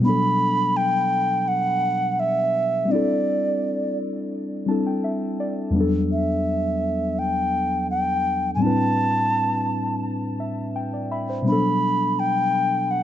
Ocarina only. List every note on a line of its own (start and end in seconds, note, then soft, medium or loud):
0.05 0.78 B5 loud
0.77 1.49 G5 loud
1.48 2.21 F#5 loud
2.20 2.93 E5 loud
2.91 3.98 D5 medium
6.12 7.20 E5 medium
7.19 7.90 G5 loud
7.91 8.51 G5 loud
8.55 8.64 G#5 medium
8.62 10.05 A5 loud
11.48 12.21 B5 loud
12.19 12.92 G5 loud
12.91 13.03 F#5 medium